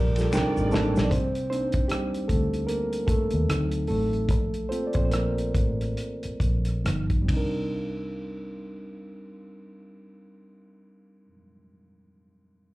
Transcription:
Already playing: fingered electric bass A#1, string section F3 G3 G4, reed electric piano F4 G4 A4 A#4 D5
0.16 reed electric piano F4 A4, snare, ride, shaker
0.31 string section C3 D#3 D5, reed electric piano G3 C4 D4 D#4 A#4 G5, finger snap, shaker
0.35 fingered electric bass C2, snare
0.57 fingered electric bass A1, shaker
0.66 reed electric piano G#4
0.71 reed electric piano G3 A3 A#3 C4 D4 D#4 A4 A5, snare, shaker
0.75 fingered electric bass A1
0.96 fingered electric bass A#1, snare, shaker
1.05 reed electric piano D5
1.11 fingered electric bass C2, reed electric piano C4 C5, kick, closed hi-hat
1.35 closed hi-hat
1.50 reed electric piano A#3 C4 D4 D#4 C5, closed hi-hat
1.72 kick, closed hi-hat
1.88 reed electric piano G3 G4, cross-stick, closed hi-hat
2.14 closed hi-hat
2.28 fingered electric bass D2, reed electric piano A3 A4, kick, closed hi-hat
2.54 closed hi-hat
2.67 reed electric piano A#3 A#4, closed hi-hat
2.93 closed hi-hat
3.07 reed electric piano A3 A4, muted fingered electric bass stroke, kick, closed hi-hat
3.31 fingered electric bass D#2, closed hi-hat
3.48 fingered electric bass D2, reed electric piano F#3 C4 D#4, cross-stick, closed hi-hat
3.71 closed hi-hat
3.87 fingered electric bass A1, reed electric piano A3 A4, open hi-hat
4.13 closed hi-hat
4.29 fingered electric bass A#1, kick, closed hi-hat
4.54 closed hi-hat
4.69 reed electric piano A#3 C4 F4 A4 C5, closed hi-hat
4.87 reed electric piano D5
4.93 fingered electric bass A#1, reed electric piano C4 C5, kick, closed hi-hat
5.05 reed electric piano C5
5.11 reed electric piano A#3 A#4, cross-stick, closed hi-hat
5.38 closed hi-hat
5.55 fingered electric bass A1, kick, closed hi-hat
5.81 cross-stick, closed hi-hat
5.97 closed hi-hat
6.23 muted fingered electric bass stroke, closed hi-hat
6.40 fingered electric bass A#1, kick, closed hi-hat
6.65 cross-stick, closed hi-hat
6.83 fingered electric bass G1, reed electric piano F3 B3 D#4, cross-stick, closed hi-hat
7.10 kick, closed hi-hat
7.22 reed electric piano G3 C4
7.28 fingered electric bass C2, reed electric piano D4, kick, ride
7.33 reed electric piano D#4 A#4

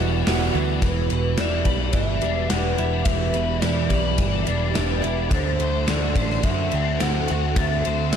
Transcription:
Already playing: clean electric guitar E2 B2 B3 F#4, overdriven electric guitar E3 E4, twelve-string acoustic guitar G3 F#4, soft synth lead E4, string machine F#5 B5 E6
0.00 picked electric bass E1, clean electric guitar E3 G3, overdriven electric guitar G3 B3, twelve-string acoustic guitar B3
0.25 picked electric bass E1, clean electric guitar E3 G3 B3 F#4, overdriven electric guitar E3 G3 B3 E4, twelve-string acoustic guitar G3, snare, open hi-hat
0.52 picked electric bass D2, clean electric guitar E3 G3 B3 F#4, overdriven electric guitar G3 B3 E4, twelve-string acoustic guitar B3
0.81 picked electric bass E1, clean electric guitar E2, overdriven electric guitar E3, twelve-string acoustic guitar B3, string machine G4 E5 B5 D6, soft synth lead B4, kick, ride
1.10 picked electric bass E1, clean electric guitar B2, twelve-string acoustic guitar B3, overdriven electric guitar B4, ride
1.37 picked electric bass E1, clean electric guitar E3, twelve-string acoustic guitar D4, overdriven electric guitar E4, soft synth lead D5, snare, ride
1.65 picked electric bass B1, clean electric guitar G3, twelve-string acoustic guitar G4, overdriven electric guitar B4, kick, ride
1.92 picked electric bass G1, clean electric guitar E3, twelve-string acoustic guitar D4, overdriven electric guitar E4, soft synth lead E5, kick, ride
2.21 picked electric bass E1, clean electric guitar G3, twelve-string acoustic guitar B3, overdriven electric guitar D4, ride
2.48 picked electric bass E1, overdriven electric guitar G3, twelve-string acoustic guitar B3, clean electric guitar D4, soft synth lead F#5, snare, ride
2.77 picked electric bass E1, overdriven electric guitar E4, clean electric guitar E4, twelve-string acoustic guitar G4, ride
3.04 picked electric bass E1, clean electric guitar E2, overdriven electric guitar E3, twelve-string acoustic guitar B3, soft synth lead E5, kick, ride
3.33 picked electric bass E1, clean electric guitar B2, twelve-string acoustic guitar B3, overdriven electric guitar B4, ride
3.60 picked electric bass E1, clean electric guitar E3, twelve-string acoustic guitar D4, overdriven electric guitar E4, soft synth lead D5, snare, ride
3.89 picked electric bass B1, clean electric guitar G3, twelve-string acoustic guitar G4, overdriven electric guitar B4, kick, ride
4.17 picked electric bass G1, clean electric guitar E3, twelve-string acoustic guitar D4, overdriven electric guitar E4, kick, ride
4.45 picked electric bass E1, clean electric guitar G3, twelve-string acoustic guitar B3, overdriven electric guitar D4, ride
4.74 picked electric bass E1, overdriven electric guitar G3, twelve-string acoustic guitar B3, clean electric guitar D4, snare, ride
5.01 picked electric bass E1, overdriven electric guitar E4, clean electric guitar E4, twelve-string acoustic guitar G4, ride
5.29 picked electric bass D2, clean electric guitar D3, overdriven electric guitar D3, twelve-string acoustic guitar F#3, string machine A4 F#5, soft synth lead C5, kick, ride
5.34 string machine C6
5.58 picked electric bass D2, twelve-string acoustic guitar F#3, clean electric guitar A3, overdriven electric guitar C5, ride
5.87 picked electric bass D2, clean electric guitar D3, twelve-string acoustic guitar C4, overdriven electric guitar F#4, soft synth lead D5, snare, ride
6.15 picked electric bass A1, clean electric guitar A3, twelve-string acoustic guitar F#4, overdriven electric guitar C5, kick, ride
6.30 snare
6.42 picked electric bass F#2, clean electric guitar D3, twelve-string acoustic guitar C4, overdriven electric guitar F#4, soft synth lead E5, kick, ride
6.71 picked electric bass D2, twelve-string acoustic guitar F#3, clean electric guitar A3, overdriven electric guitar C4, ride
6.99 picked electric bass D2, twelve-string acoustic guitar A3, overdriven electric guitar A3, clean electric guitar C4, soft synth lead F#5, snare, ride
7.27 picked electric bass D2, clean electric guitar F#4, twelve-string acoustic guitar F#4, overdriven electric guitar F#4, ride
7.54 picked electric bass D2, clean electric guitar D3, overdriven electric guitar D3, twelve-string acoustic guitar F#3, kick, ride
7.59 soft synth lead E5
7.82 twelve-string acoustic guitar F#3, clean electric guitar A3, overdriven electric guitar C5, ride
7.86 picked electric bass D2
8.11 clean electric guitar D3, twelve-string acoustic guitar C4, overdriven electric guitar F#4, snare, ride

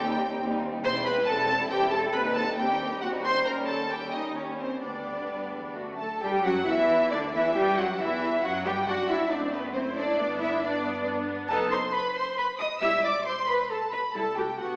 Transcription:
Already playing: cello section D#2, double bass section D#2, viola section G4
0.00 violin section G5
0.07 violin section G3 D#4
0.19 violin section C4
0.30 violin section G3 D#4
0.40 double bass section D#2, cello section D#2, violin section C4
0.51 violin section G3 D#4
0.62 violin section C4
0.73 violin section G3 D#4
0.84 double bass section E1, cello section E2, violin section C4 C6, viola section C5
0.94 violin section G3 E4
1.05 violin section C4 B5, viola section B4
1.17 violin section G3 E4
1.27 double bass section E1, cello section E2, violin section C4 A5, viola section A4
1.39 violin section G3 E4
1.49 violin section C4
1.59 violin section G3 E4
1.71 double bass section E1, cello section E2, violin section C4 G5, viola section G4
1.81 violin section G3 E4
1.91 violin section C4 A5, viola section A4
2.04 violin section G3 E4
2.13 cello section D#2, double bass section D#2, violin section C4 B5, viola section B4
2.24 violin section G3 D#4
2.35 violin section C4 A5, viola section A4
2.48 violin section G3 D#4
2.56 cello section D#2, double bass section D#2, violin section C4 G5, viola section G4
2.71 violin section G3 D#4
2.81 violin section C4
2.91 violin section G3 D#4
3.01 cello section D#2, double bass section D#2, violin section C4 F#5, viola section F#4
3.14 violin section G3 D#4
3.24 violin section C4 C6, viola section C5
3.36 violin section G3 D#4
3.46 double bass section D#2, cello section D#2, violin section G3 C#4 A#5, viola section A#4
3.68 viola section A4, violin section A5
3.91 violin section G3 C#4 G5, viola section G4
4.14 viola section D#4, violin section D#5
4.36 violin section G3 C#4 C#5, viola section C#4
4.59 viola section C4, violin section C5
4.82 cello section D2, double bass section D2, violin section G3 B3 D5, viola section D4
5.30 cello section G2
5.54 cello section E2
5.77 cello section F#2, violin section A3 F#4
5.99 cello section D2 A4, violin section A5
6.22 double bass section G2, viola section G3, cello section G4, violin section G5
6.45 double bass section F#2, viola section F#3, cello section F#4, violin section F#5
6.67 double bass section E2, viola section E3, cello section E4, violin section E5
7.11 double bass section D2, viola section D3, cello section D4, violin section D5
7.34 double bass section E2, viola section E3, cello section E4, violin section E5
7.56 double bass section G2, viola section G3, cello section G4, violin section G5
7.77 double bass section F#2, viola section F#3, cello section F#4, violin section F#5
7.99 double bass section E2, viola section E3, cello section E4, violin section E5
8.43 double bass section F#2, viola section F#3, cello section F#4, violin section F#5
8.65 double bass section G2, viola section G3, cello section G4, violin section G5
8.87 double bass section F#1, viola section D4, cello section F#4, violin section F#5
9.09 cello section E4, violin section E5
9.31 viola section A3 C4, cello section D4, violin section D5
9.53 cello section B3, violin section B4
9.74 cello section C4, viola section E4, violin section C5
9.95 cello section D4, violin section D5
10.19 double bass section G1, viola section B3 D4
10.39 cello section E4, violin section E5
10.62 viola section B3, cello section D4, violin section D5
11.06 viola section B3 D4
11.49 double bass section F#1, viola section B3 D#4, cello section A4, violin section A5
11.71 cello section C5, violin section C6
11.93 cello section B4, violin section B5
12.16 cello section C5, violin section C6
12.37 cello section B4, violin section B5
12.59 cello section D#5, violin section D#6
12.81 double bass section E1, viola section G3 E4, cello section E5, violin section E6
13.03 cello section D5, violin section D6
13.25 cello section C5, violin section C6
13.46 cello section B4, violin section B5
13.70 cello section A4, violin section A5
13.91 cello section B4, violin section B5
14.14 double bass section C2, viola section G3 E4, cello section A4, violin section A5
14.36 viola section A3 F#4, cello section G4, violin section G5
14.58 double bass section D2, viola section B3 G4, cello section F#4, violin section F#5

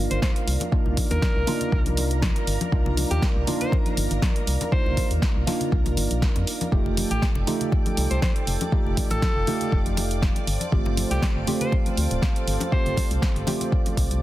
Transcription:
Already playing: synth stab A#3 D4 D#4 F4, analog synth pad A#4 D5 F5, string machine A#4 A#5
0.11 fm bass G1, alto saxophone C5, closed hi-hat
0.22 alto saxophone C5, kick, snare, muted conga, high conga
0.36 closed hi-hat
0.47 fm bass C2, open hi-hat
0.60 closed hi-hat, muted conga, high conga
0.72 synth stab A#3 D4 D#4 F4, kick
0.86 fm bass C2, low conga
0.97 kick, open hi-hat, high conga
1.11 fm bass D#2, alto saxophone A#4, closed hi-hat, muted conga
1.22 kick, snare
1.36 fm bass C2
1.47 synth stab A#3 D4 D#4 F4, open hi-hat, muted conga, high conga, low conga
1.61 closed hi-hat, low conga
1.72 fm bass C2, kick
1.86 closed hi-hat, high conga
1.97 open hi-hat, muted conga
2.11 closed hi-hat
2.22 kick, snare, high conga
2.36 closed hi-hat, muted conga
2.47 fm bass G1, open hi-hat
2.61 closed hi-hat, high conga
2.72 fm bass C2, synth stab A#3 D4 D#4 F4, kick
2.86 muted conga, low conga
2.97 open hi-hat, high conga
3.11 fm bass D#2, alto saxophone G4, closed hi-hat
3.22 kick, snare, muted conga
3.36 fm bass C2
3.47 synth stab A#3 D4 D#4 F4, open hi-hat, high conga, low conga
3.61 alto saxophone C5, closed hi-hat, low conga
3.72 kick, muted conga
3.86 closed hi-hat, high conga
3.97 fm bass G1, open hi-hat
4.11 fm bass G1, closed hi-hat, muted conga
4.22 kick, snare, high conga
4.36 closed hi-hat
4.47 fm bass C2, open hi-hat
4.61 closed hi-hat, muted conga, high conga
4.72 synth stab A#3 D4 D#4 F4, alto saxophone C5, kick
4.86 fm bass C2, low conga
4.97 kick, open hi-hat, muted conga, high conga
5.11 fm bass D#2, closed hi-hat
5.22 kick, snare
5.36 fm bass C2
5.47 synth stab A#3 D4 D#4 F4, snare, open hi-hat, muted conga, high conga, low conga
5.61 closed hi-hat, low conga
5.72 fm bass C2, kick
5.86 closed hi-hat, muted conga, high conga
5.97 fm bass G1, open hi-hat
6.11 fm bass A#1, closed hi-hat
6.22 kick, snare, high conga
6.36 fm bass F2, closed hi-hat, muted conga
6.47 open hi-hat
6.61 closed hi-hat, high conga
6.72 fm bass F1, synth stab A3 D#4 F4 G4, analog synth pad A4 G5, string machine D5 D6, kick
6.86 muted conga, low conga
6.97 open hi-hat, high conga
7.11 fm bass A1, alto saxophone G4, closed hi-hat
7.22 kick, snare
7.35 fm bass F1, muted conga
7.47 synth stab A3 D#4 F4 G4, open hi-hat, high conga, low conga
7.61 closed hi-hat, low conga
7.72 kick, muted conga
7.86 closed hi-hat, high conga
7.97 fm bass C2, open hi-hat
8.11 fm bass C2, alto saxophone C5, closed hi-hat
8.22 alto saxophone C5, kick, snare, muted conga, high conga
8.36 closed hi-hat
8.47 fm bass F1, open hi-hat
8.61 closed hi-hat, muted conga, high conga
8.72 synth stab A3 D#4 F4 G4, analog synth pad F5, kick
8.86 fm bass F1, low conga
8.97 kick, open hi-hat, high conga
9.10 fm bass A1, alto saxophone A4, closed hi-hat, muted conga
9.22 kick, snare
9.36 fm bass F1
9.47 synth stab A3 D#4 F4 G4, open hi-hat, muted conga, high conga, low conga
9.61 closed hi-hat, low conga
9.72 fm bass F1, kick
9.86 closed hi-hat, high conga
9.97 open hi-hat, muted conga
10.11 closed hi-hat
10.22 kick, snare, high conga
10.36 closed hi-hat, muted conga
10.47 fm bass G1, analog synth pad A4 C5 F5, open hi-hat
10.61 closed hi-hat, high conga
10.72 fm bass G1, synth stab A3 C4 F4 G4, kick
10.86 muted conga, low conga
10.97 open hi-hat, high conga
11.11 fm bass C2, alto saxophone G4, closed hi-hat
11.22 kick, snare, muted conga
11.36 fm bass G1
11.47 synth stab A3 C4 F4 G4, open hi-hat, high conga, low conga
11.61 alto saxophone C5, closed hi-hat, low conga
11.72 kick, muted conga
11.86 closed hi-hat, high conga
11.97 fm bass D2, open hi-hat
12.11 fm bass D1, closed hi-hat, muted conga
12.22 kick, snare, high conga
12.36 closed hi-hat
12.47 fm bass G1, open hi-hat
12.60 closed hi-hat, muted conga, high conga
12.72 synth stab A3 C4 F4 G4, alto saxophone C5, kick
12.86 fm bass G1, closed hi-hat, low conga
12.97 kick, open hi-hat, muted conga, high conga
13.11 fm bass C2, closed hi-hat
13.22 kick, snare
13.36 fm bass G1, closed hi-hat
13.47 synth stab A3 C4 F4 G4, open hi-hat, muted conga, high conga, low conga
13.61 closed hi-hat, low conga
13.72 kick
13.86 closed hi-hat, muted conga, high conga
13.97 fm bass C2, kick, open hi-hat
14.11 fm bass C2, closed hi-hat

